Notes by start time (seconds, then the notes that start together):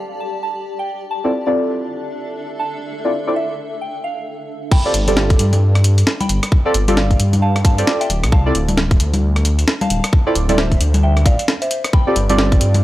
Already playing: G4 D5 A5
0.20 A5
0.43 A5
0.79 G5
0.88 D4
1.11 A5
1.24 C4 E4 F4 A4 D5
1.47 C4 E4 F4 A4 D5
1.70 E5
2.59 A5
3.05 C4 E4 F4 A4 D5
3.27 C4 E4 F4 A4 D5
3.36 E5
3.81 G5
4.04 F5
4.71 G5 B5, kick, crash
4.85 C4 F4 G4 A4 D5
4.94 G1, closed hi-hat
5.08 C4 F4 G4 A4 D5, closed hi-hat, high conga
5.17 snare
5.30 kick, closed hi-hat
5.39 G2, closed hi-hat
5.53 closed hi-hat, high conga
5.75 cross-stick, closed hi-hat
5.84 closed hi-hat
5.98 closed hi-hat
6.07 snare
6.20 G5 B5, closed hi-hat, high conga
6.29 G1, closed hi-hat
6.43 cross-stick, closed hi-hat
6.52 kick
6.65 C4 F4 G4 A4 D5
6.74 G1, closed hi-hat
6.88 C4 F4 G4 A4 D5, closed hi-hat, high conga
6.97 D5 F5, snare
7.11 kick, closed hi-hat
7.20 G2, closed hi-hat
7.33 closed hi-hat, high conga
7.42 F5 A5
7.56 cross-stick, closed hi-hat
7.65 F5 A5, kick, closed hi-hat
7.78 C4 F4 G4 A4 D5, closed hi-hat
7.87 snare
8.01 E5 G5, closed hi-hat
8.10 D1, closed hi-hat
8.23 C2, cross-stick, closed hi-hat
8.32 F5 A5, kick
8.46 C4 E4 F4 A4 D5
8.55 D1, closed hi-hat
8.69 closed hi-hat, high conga
8.77 snare
8.91 kick, closed hi-hat
9.00 D2, closed hi-hat
9.14 closed hi-hat, high conga
9.36 cross-stick, closed hi-hat
9.45 closed hi-hat
9.59 closed hi-hat
9.68 snare
9.81 F5 A5, closed hi-hat, high conga
9.90 D1, closed hi-hat
10.04 cross-stick, closed hi-hat
10.13 kick
10.26 C4 E4 F4 A4 D5
10.35 D1, closed hi-hat
10.49 C4 E4 F4 A4 D5, closed hi-hat, high conga
10.58 C5 E5, snare
10.72 kick, closed hi-hat
10.81 D2, closed hi-hat
10.94 closed hi-hat, high conga
11.03 E5 G5
11.17 cross-stick, closed hi-hat
11.26 A1 D5 F5, kick, closed hi-hat
11.39 closed hi-hat
11.48 snare
11.62 C5 E5, closed hi-hat
11.71 closed hi-hat
11.84 cross-stick, closed hi-hat
11.93 G5 B5, kick
12.07 C4 F4 G4 A4 D5
12.16 G1, closed hi-hat
12.29 C4 F4 G4 A4 D5, closed hi-hat, high conga
12.38 snare
12.52 kick, closed hi-hat
12.61 G2, closed hi-hat
12.74 closed hi-hat, high conga